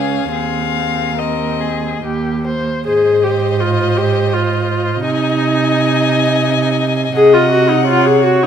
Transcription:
Already playing: cello C#2, viola C#4, violin G#4 F5
0.31 cello D#2, viola C4, violin G#4 F5
1.18 viola C4, violin A#4 D#5
1.60 violin G#4
2.02 cello D#2, viola A#3, violin G4
2.47 violin C5
2.86 cello G#2, viola G#4, violin C5 D#5
3.23 viola G4
3.60 viola F4
3.97 viola G4
4.33 viola F4
5.04 cello C3, viola D#4, violin D#5 G#5
7.15 cello C3, viola G#4, violin D#5 F#5
7.33 viola F4
7.51 viola F#4
7.69 viola D#4
7.87 viola F4, violin C#5
8.06 viola G#4
8.24 viola F#4
8.43 viola D#4

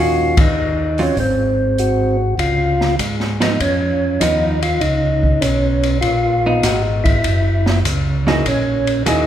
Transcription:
Already playing: tonewheel organ D#2, hollow-body jazz guitar D#3 A#3 C#4 F#4
0.00 tonewheel organ F4
0.37 tonewheel organ D#4, kick, ride
0.98 hollow-body jazz guitar F#3 C4 F4, open hi-hat
1.02 tonewheel organ C#4
1.16 tonewheel organ G#1 C4, kick, open hi-hat
1.78 tonewheel organ F#4, closed hi-hat
2.38 tonewheel organ C#2 F4, kick, ride
2.81 snare
2.98 tonewheel organ G#2, kick, hi-hat pedal, ride
3.20 snare
3.40 hollow-body jazz guitar F3 B3 D#4, tonewheel organ D#4, snare, ride
3.59 tonewheel organ F2 C#4, kick, ride
4.20 tonewheel organ D#2 D#4, hollow-body jazz guitar F3 B3 D#4, kick, hi-hat pedal, ride
4.62 tonewheel organ F4, ride
4.80 tonewheel organ C#2 D#4, kick, ride
5.23 kick
5.41 tonewheel organ B1 C#4, kick, hi-hat pedal, ride
5.83 ride
6.01 tonewheel organ A#1 F4, kick, ride
6.46 hollow-body jazz guitar B3 D#4
6.63 tonewheel organ G#1 F#4, kick, snare, hi-hat pedal, ride
7.04 tonewheel organ E4, kick, ride
7.24 tonewheel organ F#1, kick, ride
7.66 snare
7.84 tonewheel organ C#2, kick, hi-hat pedal, ride
8.27 hollow-body jazz guitar F#3 A#3 E4 G#4, tonewheel organ D#4, snare
8.45 tonewheel organ A#1 C#4, kick, ride
8.87 ride
9.06 tonewheel organ D#2 D#4, hollow-body jazz guitar F#3 A#3 E4 G#4, kick, hi-hat pedal, ride

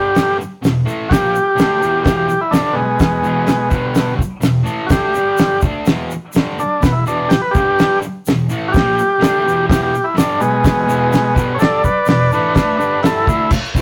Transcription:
Already playing: distorted electric guitar G2 D3 G3, transistor combo organ G4
0.15 snare, open hi-hat, shaker
0.39 muted distorted electric guitar stroke, shaker
0.62 distorted electric guitar E2 B2, snare, open hi-hat, shaker
0.85 distorted electric guitar A2 E3 A3, shaker
1.09 distorted electric guitar A#2 F3 A#3, transistor combo organ F#4 G4, kick, snare, open hi-hat, shaker
1.33 muted distorted electric guitar stroke, shaker
1.55 distorted electric guitar D3 A3 D4, open hi-hat, shaker
1.60 snare
1.79 distorted electric guitar E2 B2 E3, shaker
2.03 distorted electric guitar E2 B2 E3, transistor combo organ G4, kick, snare, open hi-hat, shaker
2.17 transistor combo organ G4
2.29 muted distorted electric guitar stroke, shaker
2.41 transistor combo organ E4
2.51 distorted electric guitar G2 D3 G3, transistor combo organ D4, snare, open hi-hat, shaker
2.73 transistor combo organ B2 G#3, muted distorted electric guitar stroke
3.00 distorted electric guitar E2 B2, kick, snare, open hi-hat, shaker
3.23 distorted electric guitar E2 B2 E3, shaker
3.47 snare, open hi-hat, shaker
3.70 distorted electric guitar G2 D3 G3, kick, shaker
3.95 snare, open hi-hat, shaker
4.17 muted distorted electric guitar stroke, kick
4.22 shaker
4.40 distorted electric guitar E2 B2, snare, open hi-hat, shaker
4.63 distorted electric guitar A2 E3 A3, shaker
4.87 distorted electric guitar D3 A3, transistor combo organ F#4, kick, open hi-hat, shaker
4.91 distorted electric guitar D4, transistor combo organ G4, snare
5.14 distorted electric guitar G2 D3 G3, shaker
5.38 snare, open hi-hat, shaker
5.61 distorted electric guitar D3 A3 D4, kick, shaker
5.86 distorted electric guitar E2 B2 E3, snare, open hi-hat, shaker
6.11 muted distorted electric guitar stroke, shaker
6.33 distorted electric guitar G2 D3 G3, snare, open hi-hat, shaker
6.59 transistor combo organ D4, muted distorted electric guitar stroke, shaker
6.81 distorted electric guitar E2 B2, transistor combo organ B3, kick, snare, open hi-hat, shaker
6.92 transistor combo organ E4
7.06 distorted electric guitar E2 B2 E3, transistor combo organ D4, shaker
7.29 transistor combo organ G4, snare, open hi-hat, shaker
7.42 transistor combo organ B4
7.51 distorted electric guitar G2, transistor combo organ G4, kick, shaker
7.56 distorted electric guitar D3 G3
7.79 snare, open hi-hat, shaker
8.02 muted distorted electric guitar stroke, shaker
8.26 distorted electric guitar E2 B2, snare, open hi-hat, shaker
8.49 distorted electric guitar A2 E3 A3, shaker
8.68 transistor combo organ F#4 G4
8.74 distorted electric guitar A#2 F3 A#3, kick, snare, open hi-hat, shaker
8.96 muted distorted electric guitar stroke, shaker
9.19 distorted electric guitar D3 A3 D4, snare, open hi-hat
9.24 shaker
9.44 distorted electric guitar E2 B2 E3
9.48 shaker
9.69 distorted electric guitar E2 B2 E3, transistor combo organ G4, kick, snare, open hi-hat, shaker
9.83 transistor combo organ G4
9.92 muted distorted electric guitar stroke, shaker
10.04 transistor combo organ E4
10.15 distorted electric guitar G2 D3 G3, transistor combo organ D4, snare, open hi-hat, shaker
10.40 transistor combo organ B2 G#3, muted distorted electric guitar stroke, shaker
10.64 distorted electric guitar E2 B2, kick, snare, open hi-hat, shaker
10.87 distorted electric guitar E2 B2 E3, shaker
11.13 snare, open hi-hat, shaker
11.34 distorted electric guitar G2 D3 G3, kick, shaker
11.54 transistor combo organ C#5
11.59 transistor combo organ A4 D5, snare, open hi-hat, shaker
11.84 transistor combo organ B4 D5, muted distorted electric guitar stroke, kick, shaker
12.06 distorted electric guitar E2 B2, transistor combo organ B4 D5, snare, open hi-hat, shaker
12.32 distorted electric guitar A2 E3 A3, transistor combo organ D4 B4, shaker
12.55 distorted electric guitar D3 A3 D4, transistor combo organ D4 B4, kick, snare, open hi-hat, shaker
12.77 distorted electric guitar G2 D3 G3, transistor combo organ D4 B4, shaker
13.03 transistor combo organ E4 A4, snare, open hi-hat, shaker
13.26 distorted electric guitar D3 A3 D4, transistor combo organ E4, kick, shaker
13.50 kick, crash, shaker
13.65 shaker
13.74 distorted electric guitar E2 B2 E3, kick, shaker

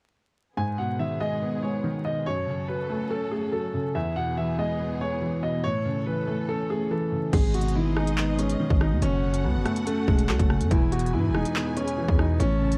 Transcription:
0.57 string section G#2 D#3 B3 G#4, felt piano G#2, grand piano G#5
0.78 felt piano B2, grand piano F#5
0.99 felt piano D#3, grand piano E5
1.20 felt piano G#3, grand piano D#5
1.42 felt piano B3
1.63 felt piano G#3, grand piano C#5
1.84 felt piano D#3
2.05 felt piano B2, grand piano D#5
2.26 felt piano F#2, string section F#2 F#3 C#4 A4, grand piano C#5
2.47 felt piano C#3
2.68 felt piano F#3, grand piano B4
2.89 felt piano A3
3.10 felt piano C#4, grand piano A4
3.31 felt piano A3, grand piano G#4
3.52 felt piano F#3, grand piano A4
3.74 felt piano C#3
3.95 felt piano E2, string section E2 E3 B3 G#4, grand piano E5
4.16 felt piano B2, grand piano F#5
4.37 felt piano E3, grand piano E5
4.58 felt piano G#3, grand piano D#5
4.80 felt piano B3
5.01 felt piano G#3, grand piano C#5
5.22 felt piano E3
5.43 felt piano B2, grand piano D#5
5.64 felt piano A2, string section A2 C#4 A4, grand piano C#5
5.85 felt piano C#3
6.06 felt piano E3, grand piano B4
6.27 felt piano A3
6.48 felt piano C#4, grand piano A4
6.70 felt piano A3, grand piano G#4
6.91 felt piano E3, grand piano A4
7.12 felt piano C#3
7.33 808-style bass G#1, felt piano G#2, string section B3 D#4 G#4 D#5, grand piano G#4, kick, closed hi-hat, crash
7.54 felt piano B2, grand piano F#4, closed hi-hat
7.61 closed hi-hat
7.68 closed hi-hat
7.75 felt piano D#3, grand piano E4
7.96 felt piano G#3, grand piano D#4, cross-stick
8.07 closed hi-hat
8.18 felt piano B3, clap
8.39 felt piano G#3, grand piano C#4, closed hi-hat
8.49 closed hi-hat
8.60 felt piano D#3
8.70 808-style bass G#1, kick
8.81 felt piano B2, grand piano D#4, cross-stick
8.92 808-style bass D#2
9.02 808-style bass F#1, felt piano F#2, string section C#4 F#4 A4 F#5, grand piano C#4, closed hi-hat
9.23 felt piano C#3
9.34 closed hi-hat
9.44 808-style bass C#2, felt piano F#3, grand piano B3
9.55 808-style bass F#1
9.65 felt piano A3, cross-stick, closed hi-hat
9.76 closed hi-hat
9.86 grand piano A3, felt piano C#4, closed hi-hat
10.08 808-style bass E1, grand piano G#3, felt piano A3, kick
10.19 closed hi-hat
10.29 808-style bass C#2, felt piano F#3, grand piano A3, clap
10.39 808-style bass F#1, kick, closed hi-hat
10.50 felt piano C#3, cross-stick
10.61 808-style bass F#2, closed hi-hat
10.71 808-style bass E1, felt piano E2, string section E3 G#4 B4 G#5, grand piano E4, kick, closed hi-hat
10.92 felt piano B2, grand piano F#4, closed hi-hat
10.99 closed hi-hat
11.06 closed hi-hat
11.13 808-style bass G#2, felt piano E3, grand piano E4
11.29 808-style bass E1
11.35 felt piano G#3, grand piano D#4, cross-stick
11.45 closed hi-hat
11.56 felt piano B3, clap
11.77 felt piano G#3, grand piano C#4, closed hi-hat
11.88 closed hi-hat
11.98 felt piano E3
12.08 808-style bass E2, kick
12.19 felt piano B2, grand piano D#4, cross-stick
12.40 808-style bass A1, felt piano A2, grand piano C#4, string section A4 C#5 A5, closed hi-hat
12.61 felt piano C#3
12.72 closed hi-hat

